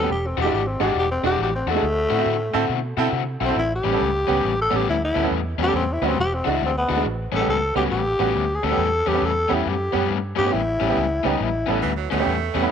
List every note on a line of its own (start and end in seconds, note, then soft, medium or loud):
0.02 0.09 B3 medium
0.02 0.10 C#4 medium
0.02 0.10 G4 medium
0.10 0.33 E1 medium
0.10 0.28 G4 medium
0.27 0.39 C4 medium
0.37 0.50 E1 medium
0.37 0.62 E3 medium
0.37 0.62 G#3 medium
0.37 0.41 D4 soft
0.37 0.61 D4 medium
0.37 0.61 F#4 medium
0.37 0.42 F#4 soft
0.37 0.53 G4 loud
0.44 0.52 G#3 medium
0.44 0.53 D4 medium
0.44 0.53 E4 medium
0.53 0.76 G#1 medium
0.53 0.69 G4 medium
0.67 0.81 C4 medium
0.80 0.93 G#1 medium
0.80 1.05 E3 medium
0.80 0.88 G#3 medium
0.80 1.05 G#3 medium
0.80 0.88 D4 medium
0.80 1.05 D4 medium
0.80 1.04 F#4 medium
0.80 0.96 G4 medium
0.80 0.89 G#4 medium
0.95 1.18 E1 medium
0.99 1.11 G4 loud
1.11 1.25 C4 loud
1.23 1.36 E1 medium
1.23 1.49 E3 medium
1.23 1.32 G#3 medium
1.23 1.48 G#3 medium
1.23 1.32 D4 medium
1.23 1.48 D4 medium
1.23 1.48 F#4 medium
1.23 1.32 F#4 medium
1.23 1.40 G4 loud
1.39 1.62 A1 medium
1.43 1.55 G4 medium
1.55 1.69 C4 medium
1.67 1.79 E2 medium
1.67 1.83 E3 medium
1.67 1.83 G#3 medium
1.67 2.96 A3 loud
1.67 1.71 D4 soft
1.67 1.83 D4 medium
1.67 1.83 F#4 medium
1.67 1.72 F#4 soft
1.75 1.83 G#3 medium
1.75 1.83 D4 medium
1.75 1.83 G#4 medium
1.83 2.06 D2 loud
2.10 2.23 A2 medium
2.10 2.35 D3 medium
2.10 2.35 C4 medium
2.10 2.34 E4 medium
2.10 2.15 E4 soft
2.10 2.34 F#4 medium
2.10 2.16 F#4 soft
2.18 2.26 C4 medium
2.18 2.26 E4 medium
2.18 2.27 F#4 medium
2.26 2.49 A2 medium
2.53 2.67 A2 medium
2.53 2.79 D3 medium
2.53 2.62 C4 medium
2.53 2.79 C4 medium
2.53 2.78 E4 medium
2.53 2.62 E4 medium
2.53 2.78 F#4 medium
2.53 2.62 A4 loud
2.69 2.92 B2 medium
2.97 3.10 B2 medium
2.97 3.22 D3 medium
2.97 3.22 C4 medium
2.97 3.06 C4 medium
2.97 3.22 E4 medium
2.97 3.06 E4 medium
2.97 3.21 F#4 medium
2.97 3.07 A4 loud
3.12 3.36 C3 medium
3.40 3.53 B1 medium
3.40 3.57 D3 medium
3.40 3.57 C4 medium
3.40 3.45 E4 soft
3.40 3.57 E4 medium
3.40 3.56 F#4 medium
3.40 3.46 A4 medium
3.45 3.58 C4 medium
3.45 3.57 C4 medium
3.49 3.57 E4 medium
3.49 3.57 A4 medium
3.56 3.79 A1 medium
3.56 3.72 E4 loud
3.75 4.58 G4 medium
3.84 3.98 A1 medium
3.84 4.09 A2 medium
3.84 4.09 G3 medium
3.84 4.08 B3 medium
3.84 4.08 C#4 medium
3.84 3.89 C#4 soft
3.84 3.90 G4 soft
3.92 4.00 B3 medium
3.92 4.01 C#4 medium
3.92 4.01 A4 medium
4.01 4.24 C#2 medium
4.27 4.41 C#2 medium
4.27 4.52 A2 medium
4.27 4.52 G3 medium
4.27 4.36 B3 medium
4.27 4.52 B3 medium
4.27 4.52 C#4 medium
4.27 4.36 C#4 medium
4.27 4.36 G4 medium
4.45 4.67 A1 medium
4.61 4.77 A4 loud
4.70 4.85 A1 medium
4.70 4.96 A2 medium
4.70 4.96 G3 medium
4.70 4.79 B3 medium
4.70 4.95 B3 medium
4.70 4.95 C#4 medium
4.70 4.79 C#4 medium
4.70 4.80 A4 medium
4.76 4.88 G4 medium
4.89 5.11 D2 medium
4.89 5.03 E4 loud
5.05 5.27 E4 loud
5.15 5.28 D2 medium
5.15 5.40 A2 medium
5.15 5.40 G3 medium
5.15 5.39 B3 medium
5.15 5.39 C#4 medium
5.15 5.19 C#4 soft
5.15 5.20 A4 medium
5.23 5.31 B3 medium
5.23 5.31 C#4 medium
5.23 5.31 A4 medium
5.31 5.54 E2 medium
5.58 5.71 E2 medium
5.58 5.83 A2 medium
5.58 5.83 G3 medium
5.58 5.83 B3 medium
5.58 5.82 C#4 loud
5.58 5.63 C#4 soft
5.58 5.64 G4 medium
5.63 5.74 B3 medium
5.63 5.75 G4 loud
5.67 5.75 C#4 medium
5.67 5.75 A4 medium
5.74 5.97 E2 medium
5.74 5.95 C4 medium
5.93 6.08 E4 medium
6.02 6.14 D2 medium
6.02 6.18 A2 medium
6.02 6.18 G3 medium
6.02 6.10 B3 medium
6.02 6.18 B3 medium
6.02 6.18 C#4 medium
6.02 6.11 C#4 medium
6.02 6.11 F#4 medium
6.07 6.19 C4 medium
6.18 6.40 E1 medium
6.18 6.36 G4 loud
6.34 6.52 C4 medium
6.45 6.59 C#2 medium
6.45 6.70 E3 medium
6.45 6.69 G#3 medium
6.45 6.54 G#3 medium
6.45 6.69 D4 medium
6.45 6.54 D4 medium
6.45 6.69 F#4 medium
6.45 6.54 F#4 medium
6.50 6.63 E4 medium
6.62 6.84 D2 medium
6.66 6.77 C4 medium
6.78 7.05 B3 loud
6.88 7.02 D2 medium
6.88 7.05 E3 medium
6.88 7.05 G#3 medium
6.88 6.93 D4 soft
6.88 7.05 D4 medium
6.88 7.04 F#4 medium
6.88 6.93 F#4 medium
6.96 7.04 G#3 medium
6.96 7.05 D4 medium
6.96 7.05 F#4 medium
7.05 7.28 A1 medium
7.32 7.45 A1 medium
7.32 7.57 A2 medium
7.32 7.57 G3 medium
7.32 7.56 B3 medium
7.32 7.56 C#4 medium
7.32 7.36 C#4 soft
7.32 7.37 G4 soft
7.32 7.49 A4 medium
7.40 7.48 B3 medium
7.40 7.48 C#4 medium
7.40 7.49 G4 medium
7.47 7.70 C#2 medium
7.47 7.75 A4 loud
7.75 7.88 C#2 medium
7.75 8.01 A2 medium
7.75 8.00 G3 medium
7.75 7.83 B3 medium
7.75 8.00 B3 medium
7.75 7.84 C#4 medium
7.75 8.00 C#4 medium
7.75 7.84 F#4 medium
7.75 7.84 G4 medium
7.91 8.15 A1 medium
7.91 8.56 G4 loud
8.19 8.32 A1 medium
8.19 8.44 A2 medium
8.19 8.44 G3 medium
8.19 8.27 B3 medium
8.19 8.44 B3 medium
8.19 8.43 C#4 medium
8.19 8.28 C#4 medium
8.19 8.28 F#4 medium
8.36 8.58 D2 medium
8.55 8.66 G#4 medium
8.63 8.76 D2 medium
8.63 8.88 A2 medium
8.63 8.87 G3 medium
8.63 8.87 B3 medium
8.63 8.67 C#4 soft
8.63 8.87 C#4 medium
8.63 8.68 A4 soft
8.63 9.10 A4 loud
8.70 8.78 B3 medium
8.70 8.79 C#4 medium
8.70 8.79 G4 medium
8.77 9.01 E2 medium
9.06 9.19 E2 medium
9.06 9.31 A2 medium
9.06 9.31 G3 medium
9.06 9.31 B3 loud
9.06 9.30 C#4 medium
9.06 9.10 C#4 soft
9.06 9.26 G4 medium
9.06 9.11 A4 soft
9.14 9.22 B3 medium
9.14 9.22 C#4 medium
9.14 9.23 A4 medium
9.22 9.45 E2 medium
9.22 9.55 A4 medium
9.48 9.63 E2 medium
9.48 9.74 A2 medium
9.48 9.74 G3 medium
9.48 9.57 B3 medium
9.48 9.74 B3 medium
9.48 9.73 C#4 medium
9.48 9.58 C#4 medium
9.48 9.58 G4 medium
9.54 9.70 E4 medium
9.66 9.89 F#2 medium
9.66 10.11 G4 medium
9.92 10.06 F#2 medium
9.92 10.18 A2 medium
9.92 10.17 G3 medium
9.92 10.01 B3 medium
9.92 10.17 B3 medium
9.92 10.17 C#4 medium
9.92 10.01 C#4 medium
9.92 10.02 G4 medium
10.10 10.33 G2 medium
10.36 10.50 G2 medium
10.36 10.61 A2 medium
10.36 10.60 G3 medium
10.36 10.60 B3 medium
10.36 10.60 C#4 medium
10.36 10.41 C#4 soft
10.36 10.54 G4 loud
10.36 10.42 G4 soft
10.45 10.53 B3 medium
10.45 10.53 C#4 medium
10.45 10.53 G4 medium
10.53 10.76 A1 medium
10.53 11.28 E4 loud
10.80 10.93 A1 medium
10.80 11.05 A2 medium
10.80 11.04 G3 medium
10.80 11.04 B3 medium
10.80 11.04 C#4 loud
10.80 10.85 C#4 soft
10.80 10.85 G4 soft
10.89 10.96 B3 medium
10.89 10.97 C#4 medium
10.89 10.97 G4 medium
10.97 11.19 C#2 medium
11.23 11.37 C#2 medium
11.23 11.48 A2 medium
11.23 11.48 G3 medium
11.23 11.48 B3 medium
11.23 11.32 B3 medium
11.23 11.48 C#4 medium
11.23 11.32 C#4 medium
11.23 11.44 D#4 medium
11.23 11.33 G4 medium
11.40 11.63 A1 medium
11.40 11.85 E4 medium
11.66 11.80 A1 medium
11.66 11.92 A2 medium
11.66 11.91 G3 medium
11.66 11.91 B3 medium
11.66 11.76 B3 medium
11.66 11.91 C#4 medium
11.66 11.76 C#4 medium
11.70 11.77 A4 medium
11.82 12.06 D2 medium
11.82 11.96 E3 medium
11.96 12.11 F#3 medium
12.10 12.24 D2 medium
12.10 12.36 A2 medium
12.10 12.35 G3 medium
12.10 12.71 A3 medium
12.10 12.35 B3 medium
12.10 12.35 C#4 medium
12.10 12.16 C#4 medium
12.10 12.16 F#4 medium
12.20 12.27 B3 medium
12.20 12.27 C#4 medium
12.20 12.28 G4 medium
12.26 12.49 E2 medium
12.54 12.67 E2 medium
12.54 12.71 A2 medium
12.54 12.71 G3 medium
12.54 12.71 B3 medium
12.54 12.71 C#4 medium
12.54 12.59 C#4 medium
12.54 12.59 G4 medium
12.62 12.70 B3 medium
12.62 12.70 C#4 medium
12.62 12.71 E4 medium